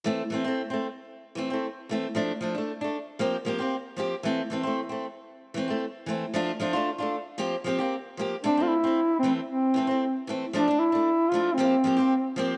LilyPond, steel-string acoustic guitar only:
\new Staff \with { instrumentName = "Steel-string acoustic guitar" } { \time 4/4 \key a \phrygian \tempo 4 = 114 <e a c'>16 r16 <e a c'>16 <a c'>16 r16 <a c'>16 r4 <e a c'>16 <a c'>16 r8 <e a c'>16 r16 | <f a d'>16 r16 <f a d'>16 <a d'>16 r16 <a d'>16 r8 <f bes c' g'>16 r16 <f bes c' g'>16 <bes c' g'>16 r8 <f bes c' g'>16 r16 | <e a c'>16 r16 <e a c'>16 <a c'>16 r16 <a c'>16 r4 <e a c'>16 <a c'>16 r8 <e a c'>16 r16 | <f a d' f'>16 r16 <f a d' f'>16 <a d' f'>16 r16 <a d' f'>16 r8 <f bes c' g'>16 r16 <f bes c' g'>16 <bes c' g'>16 r8 <f bes g'>16 r16 |
<a c'>16 <a c'>16 r16 <a c'>16 r8 <e a c'>16 r8. <e a c'>16 <a c'>16 r8 <e a c'>16 r16 | <f a d'>16 d'16 r16 <a d'>16 r8 <f a d'>16 r16 <f bes c' g'>16 r16 <f bes c' g'>16 <bes c' g'>16 r8 <f bes c' g'>16 r16 | }